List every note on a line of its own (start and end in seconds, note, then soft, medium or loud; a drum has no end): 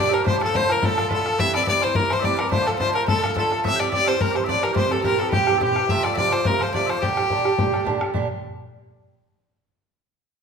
0.00 0.12 A#2 medium
0.00 0.12 D3 medium
0.00 0.11 D4 medium
0.00 0.13 D5 medium
0.00 0.15 D5 loud
0.09 0.25 D4 soft
0.09 0.25 G4 medium
0.09 0.13 E5 medium
0.13 0.24 D3 soft
0.13 0.23 A#4 medium
0.13 0.26 A#4 medium
0.13 0.25 A#4 medium
0.13 bodhran medium
0.23 0.40 A2 medium
0.23 0.41 D3 medium
0.23 0.40 A3 medium
0.23 0.40 C5 loud
0.23 0.40 C5 medium
0.23 0.38 C5 medium
0.23 0.27 D5 medium
0.23 bodhran medium
0.27 0.39 F4 medium
0.38 0.53 D3 soft
0.38 0.53 A3 medium
0.38 0.54 F4 medium
0.38 0.54 A4 medium
0.38 0.56 A4 medium
0.38 0.42 D5 medium
0.38 bodhran medium
0.43 0.57 A4 medium
0.54 0.69 A2 medium
0.54 0.69 D3 medium
0.54 0.69 A3 medium
0.54 0.68 F4 medium
0.54 0.68 C5 medium
0.54 0.71 C5 medium
0.54 0.73 C5 loud
0.54 bodhran medium
0.62 bodhran soft
0.69 0.81 D3 soft
0.69 0.81 A3 soft
0.69 0.82 F4 soft
0.69 0.81 A#4 medium
0.69 0.84 A#4 medium
0.69 0.87 A#4 medium
0.69 bodhran medium
0.81 0.97 A2 medium
0.81 0.97 D3 medium
0.81 0.97 A3 medium
0.81 0.96 F4 medium
0.81 0.96 A4 medium
0.81 1.09 A4 medium
0.81 bodhran medium
0.86 1.12 A4 loud
0.97 1.09 D3 medium
0.97 1.10 A3 medium
0.97 1.10 F4 medium
0.97 1.09 A#4 medium
0.97 bodhran medium
1.09 1.25 A2 medium
1.09 1.25 D3 medium
1.09 1.26 A3 medium
1.09 1.24 F4 medium
1.09 1.39 A4 medium
1.09 1.12 B4 medium
1.09 bodhran medium
1.14 1.42 A4 medium
1.26 1.40 D3 soft
1.26 1.40 A3 soft
1.26 1.39 F4 medium
1.26 bodhran medium
1.39 1.54 G2 medium
1.39 1.54 E3 medium
1.39 1.55 C4 medium
1.39 1.53 E4 loud
1.39 1.54 E5 medium
1.39 1.53 E5 medium
1.39 1.54 E5 loud
1.39 bodhran medium
1.53 1.67 E3 soft
1.53 1.68 C4 soft
1.53 1.67 E4 medium
1.53 1.65 D5 medium
1.53 1.63 D5 medium
1.53 1.67 D5 loud
1.53 bodhran medium
1.63 1.82 G2 medium
1.63 1.81 D5 medium
1.63 1.68 E5 loud
1.63 bodhran medium
1.68 1.83 E3 medium
1.68 1.83 C4 medium
1.68 1.82 E4 medium
1.68 1.82 D5 loud
1.68 1.85 D5 loud
1.75 bodhran soft
1.82 1.96 E3 soft
1.82 1.96 C4 soft
1.82 1.96 E4 soft
1.82 1.96 C5 medium
1.82 1.94 C5 medium
1.82 1.97 C5 medium
1.82 bodhran soft
1.95 2.11 G2 medium
1.95 2.11 E3 medium
1.95 2.11 C4 medium
1.95 2.09 E4 medium
1.95 2.09 A#4 medium
1.95 2.11 A#4 medium
1.95 2.15 A#4 loud
1.95 bodhran medium
2.10 2.23 E3 medium
2.10 2.24 C4 medium
2.10 2.23 E4 medium
2.10 2.21 C5 medium
2.10 2.20 C5 medium
2.10 2.26 C5 medium
2.10 bodhran medium
2.20 2.33 D5 medium
2.20 2.24 E5 medium
2.24 2.39 G2 medium
2.24 2.39 E3 medium
2.24 2.39 C4 medium
2.24 2.37 E4 medium
2.24 2.52 D5 medium
2.24 2.41 D5 medium
2.24 bodhran medium
2.33 2.50 A#4 loud
2.33 2.36 C5 medium
2.39 2.51 E3 soft
2.39 2.52 C4 soft
2.39 2.52 E4 soft
2.39 2.50 A#4 medium
2.39 bodhran medium
2.51 2.66 A2 medium
2.51 2.67 D3 loud
2.51 2.66 A3 medium
2.51 2.65 F4 medium
2.51 2.68 C5 loud
2.51 2.67 C5 medium
2.51 2.63 C5 medium
2.51 bodhran medium
2.63 2.79 F4 medium
2.63 2.80 A4 medium
2.63 2.66 D5 medium
2.67 2.79 D3 soft
2.67 2.80 A3 medium
2.67 2.78 A4 medium
2.67 2.79 A4 medium
2.67 bodhran medium
2.79 2.95 A2 medium
2.79 2.95 D3 medium
2.79 2.95 A3 medium
2.79 2.94 F4 medium
2.79 2.93 C5 loud
2.79 2.95 C5 medium
2.79 2.94 C5 medium
2.79 bodhran medium
2.88 bodhran soft
2.95 3.08 D3 soft
2.95 3.09 A3 soft
2.95 3.08 F4 medium
2.95 3.04 A#4 medium
2.95 3.07 A#4 medium
2.95 3.08 A#4 medium
2.95 bodhran medium
3.04 3.23 A2 medium
3.04 3.22 A4 medium
3.04 3.34 A4 medium
3.04 3.08 C5 medium
3.08 3.23 D3 medium
3.08 3.24 A3 medium
3.08 3.22 F4 medium
3.08 3.21 A4 medium
3.08 bodhran loud
3.21 3.36 A3 medium
3.21 3.36 F4 medium
3.21 3.34 A#4 medium
3.21 3.36 A#4 medium
3.21 bodhran medium
3.26 3.36 D3 soft
3.35 3.51 A2 medium
3.35 3.51 D3 medium
3.35 3.52 A3 medium
3.35 3.50 F4 medium
3.35 3.64 A4 medium
3.35 3.65 A4 medium
3.35 3.63 A4 medium
3.35 bodhran medium
3.52 3.66 D3 soft
3.52 3.65 A3 soft
3.52 3.64 F4 soft
3.52 bodhran soft
3.64 3.80 A2 medium
3.64 3.80 E3 medium
3.64 3.80 C4 medium
3.64 3.78 G4 medium
3.64 3.90 E5 medium
3.64 3.76 E5 medium
3.64 3.81 E5 loud
3.64 bodhran medium
3.76 3.92 G4 medium
3.76 3.92 D5 medium
3.76 3.89 D5 medium
3.76 3.80 G5 medium
3.80 3.92 E3 soft
3.80 3.93 C4 soft
3.80 bodhran medium
3.89 4.07 A2 medium
3.89 4.06 D5 medium
3.89 3.93 E5 medium
3.89 bodhran medium
3.93 4.08 E3 medium
3.93 4.07 C4 medium
3.93 4.06 G4 medium
3.93 4.04 D5 medium
3.93 4.09 D5 loud
4.04 4.20 C4 soft
4.04 4.20 G4 medium
4.04 4.20 C5 medium
4.04 4.23 C5 medium
4.04 4.20 C5 medium
4.04 4.08 E5 medium
4.04 bodhran medium
4.10 4.20 E3 soft
4.20 4.35 A2 medium
4.20 4.36 E3 medium
4.20 4.35 C4 medium
4.20 4.33 G4 medium
4.20 4.32 A#4 medium
4.20 4.49 A#4 medium
4.20 4.37 A#4 loud
4.20 bodhran medium
4.32 4.48 G4 medium
4.32 4.36 D5 medium
4.32 bodhran medium
4.36 4.47 E3 medium
4.36 4.47 C4 medium
4.36 4.47 C5 medium
4.36 4.44 C5 medium
4.44 4.63 A2 medium
4.44 4.65 D5 medium
4.44 4.48 E5 medium
4.48 4.63 E3 medium
4.48 4.63 C4 medium
4.48 4.61 G4 medium
4.48 4.64 D5 medium
4.48 4.63 D5 loud
4.48 bodhran medium
4.63 4.74 E3 soft
4.63 4.74 C4 medium
4.63 4.75 G4 medium
4.63 4.75 A#4 medium
4.63 4.73 A#4 medium
4.63 bodhran medium
4.73 4.91 A#2 medium
4.73 4.91 E3 medium
4.73 4.90 C4 medium
4.73 4.89 G4 medium
4.73 4.94 C5 medium
4.73 4.92 C5 medium
4.73 4.91 C5 medium
4.73 4.77 D5 medium
4.73 bodhran medium
4.91 5.04 E3 soft
4.91 5.04 C4 soft
4.91 5.04 G4 medium
4.91 5.05 A4 medium
4.91 5.04 A4 medium
4.91 5.03 A4 medium
4.91 bodhran medium
5.04 5.19 A#2 medium
5.04 5.20 E3 medium
5.04 5.19 C4 medium
5.04 5.18 G4 medium
5.04 5.20 A#4 medium
5.04 5.19 A#4 medium
5.04 5.21 A#4 medium
5.04 bodhran medium
5.12 bodhran soft
5.19 5.31 E3 soft
5.19 5.32 C4 soft
5.19 5.33 G4 medium
5.19 5.32 A4 medium
5.19 5.33 A4 medium
5.19 5.29 A4 medium
5.19 bodhran medium
5.29 5.47 A#2 medium
5.29 5.48 E3 medium
5.29 5.47 C4 medium
5.29 5.59 G4 medium
5.29 5.58 G4 medium
5.29 5.33 B4 medium
5.29 bodhran medium
5.33 5.59 G4 medium
5.33 5.46 G4 medium
5.47 5.60 E3 soft
5.47 5.61 C4 medium
5.47 5.61 G4 medium
5.47 bodhran medium
5.58 5.76 A#2 medium
5.58 5.76 E3 medium
5.58 5.87 G4 medium
5.58 5.62 A4 medium
5.58 bodhran medium
5.62 5.76 C4 medium
5.62 5.90 G4 medium
5.62 5.75 G4 medium
5.62 5.92 G4 medium
5.76 5.90 E3 soft
5.76 5.90 C4 soft
5.76 5.89 G4 soft
5.76 bodhran medium
5.87 6.05 C3 medium
5.87 6.05 F3 medium
5.87 6.05 A3 medium
5.87 6.03 F4 medium
5.87 6.02 E5 medium
5.87 6.05 E5 loud
5.87 6.06 E5 medium
5.87 bodhran medium
6.03 6.18 A3 medium
6.03 6.18 F4 medium
6.03 6.14 D5 medium
6.03 6.16 D5 medium
6.03 6.14 D5 medium
6.03 bodhran medium
6.07 6.18 F3 soft
6.14 6.30 D5 medium
6.14 6.34 D5 loud
6.14 6.46 D5 medium
6.14 6.17 E5 medium
6.14 bodhran medium
6.19 6.33 C3 medium
6.19 6.33 F3 medium
6.19 6.33 A3 medium
6.19 6.32 F4 medium
6.25 bodhran soft
6.31 6.47 A3 soft
6.31 6.46 F4 medium
6.31 6.44 C5 medium
6.31 6.48 C5 medium
6.31 bodhran medium
6.35 6.46 F3 soft
6.44 6.61 C3 medium
6.44 6.61 F3 medium
6.44 6.58 A#4 medium
6.44 6.62 A#4 medium
6.44 6.64 A#4 loud
6.44 bodhran medium
6.49 6.62 A3 medium
6.49 6.60 F4 medium
6.59 6.74 F4 medium
6.59 6.73 C5 medium
6.59 6.75 C5 medium
6.59 6.74 C5 medium
6.59 bodhran medium
6.63 6.73 F3 medium
6.63 6.74 A3 medium
6.73 6.88 C3 medium
6.73 6.89 F3 medium
6.73 6.89 A3 medium
6.73 6.87 F4 medium
6.73 7.00 D5 medium
6.73 6.91 D5 medium
6.73 6.86 D5 medium
6.73 bodhran medium
6.86 7.02 A3 soft
6.86 7.02 F4 medium
6.86 7.04 C5 medium
6.86 6.90 E5 medium
6.86 bodhran medium
6.90 7.03 F3 soft
6.90 6.99 C5 medium
6.99 7.17 A#2 medium
6.99 7.17 D3 medium
6.99 7.82 G4 medium
6.99 7.86 G4 medium
6.99 7.83 G4 medium
6.99 7.03 D5 medium
6.99 bodhran medium
7.04 7.17 D4 medium
7.04 7.16 G4 medium
7.17 7.31 D3 soft
7.17 7.31 D4 medium
7.17 7.30 G4 soft
7.17 bodhran medium
7.30 7.46 A#2 medium
7.30 7.46 D3 medium
7.30 7.46 D4 medium
7.30 7.44 G4 medium
7.30 bodhran medium
7.38 bodhran soft
7.45 7.57 D3 soft
7.45 7.58 D4 soft
7.45 7.58 G4 medium
7.45 bodhran medium
7.58 7.73 A#2 medium
7.58 7.73 D3 medium
7.58 7.73 D4 medium
7.58 7.71 G4 medium
7.58 bodhran medium
7.72 7.85 D3 medium
7.72 7.85 D4 medium
7.72 7.85 G4 medium
7.72 bodhran medium
7.85 8.00 A#2 medium
7.85 8.01 D3 medium
7.85 8.00 D4 loud
7.85 7.99 G4 medium
7.85 bodhran medium
8.00 8.14 D3 soft
8.00 8.14 D4 medium
8.00 8.14 G4 medium
8.00 bodhran medium
8.14 8.26 A#2 medium
8.14 8.26 D3 medium
8.14 8.27 D4 medium
8.14 8.27 G4 medium
8.14 bodhran medium